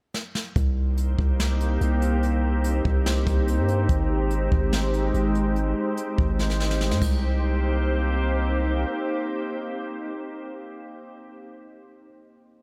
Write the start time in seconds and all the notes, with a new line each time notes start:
0.14 snare
0.35 snare
0.56 C2 A#3 C4 D#4 G4 C5, kick, closed hi-hat
0.97 closed hi-hat
1.19 C2, kick
1.40 snare, closed hi-hat
1.60 closed hi-hat
1.81 C2, closed hi-hat
2.02 closed hi-hat
2.23 closed hi-hat
2.64 closed hi-hat
2.85 C2, kick
3.06 snare, closed hi-hat
3.27 C2, kick, closed hi-hat
3.48 closed hi-hat
3.58 G2
3.68 closed hi-hat
3.89 G#1 G#3, kick, closed hi-hat
4.31 closed hi-hat
4.52 G#1, kick
4.73 snare, closed hi-hat
4.94 closed hi-hat
5.14 G#1, closed hi-hat
5.35 closed hi-hat
5.56 closed hi-hat
5.97 closed hi-hat
6.18 G#1, kick
6.39 snare
6.50 snare
6.60 snare
6.71 snare
6.81 snare
6.91 G#2, snare
7.02 C2 A#3 C4 D#4 G4 C5, kick, crash